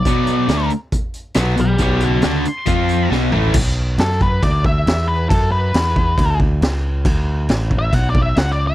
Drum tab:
CC |----------------|----------------|x---x---x---x---|x---x---x---x---|
HH |x-x-x-x-x-x-x-x-|x-x-x-x-x-x-----|----------------|----------------|
SD |----o-------o---|----o-------o---|----oo------o---|----o-------o---|
T2 |----------------|--------------o-|----------------|----------------|
FT |----------------|---------------o|----------------|----------------|
BD |o-------o-------|o-------o-------|o-----o-o-o-----|o-----o-o-o-----|

CC |x---x---x---x---|
HH |----------------|
SD |----o-------o---|
T2 |----------------|
FT |----------------|
BD |o-----o-o-o-----|